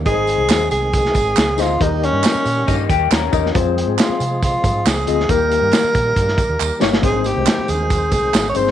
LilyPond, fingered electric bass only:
\new Staff \with { instrumentName = "Fingered electric bass" } { \clef bass \time 4/4 \key aes \major \tempo 4 = 138 aes,,8. c,16 ees,8 c,4 aes,,8 des,8 d,8 | ees,8. g,16 r8 bes,8 g,8 ees,8 ees,8 fes,8 | f,8. aes,16 r8 c4 aes,8 des,8 d,8 | ees,8. g,16 r8 bes,8 g,8 r16 ees,16 ees,16 r16 g,,8 |
aes,,8. c,16 r8 ees,4 c,8 aes,,8 g,,8 | }